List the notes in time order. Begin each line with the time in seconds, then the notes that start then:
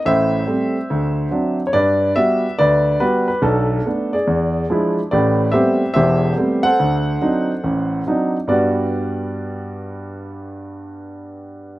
0.05 A1 A2 C5 E5
0.47 G3 A3 C4
0.90 D2
1.31 F#3 C4 D4
1.67 C#5
1.73 G2 B4 D5
2.16 G3 B3 F#4 E5
2.59 D2 B4 D5
3.00 G3 B3 F#4 B4
3.28 B4
3.42 B1 D4 A4
3.86 A3 B3 D4
4.13 G#4 D5
4.27 E2
4.70 F3 G#3 D4 E4
5.11 A1 A2 G4 B4 D5
5.52 G3 A3 B3 C4 G4 C5 E5
5.94 E1 E2 G4 C5 E5
6.36 G3 A3 B3 C4
6.63 A4 C5 F#5
6.80 D2
7.21 F#3 C4 D4 D#4
7.64 A1
8.07 F#3 C4 D4 D#4
8.47 G2 G3 B3 F#4 D5